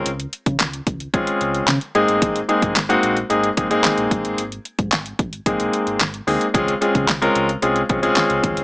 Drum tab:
HH |xxxxxxxxxxxxxxxx|xxxxxxxxxxxxxxxx|xxxxxxxxxxxxxxox|xxxxxxxxxxxxxxxx|
CP |----x-------x---|----x-------x---|----x-------x---|----x-------x---|
SD |----o-------o---|----o-------o---|----o-------o---|----o-------o---|
BD |---o--o-o-------|o--o------o---o-|---o--o-o-------|o--o------o---o-|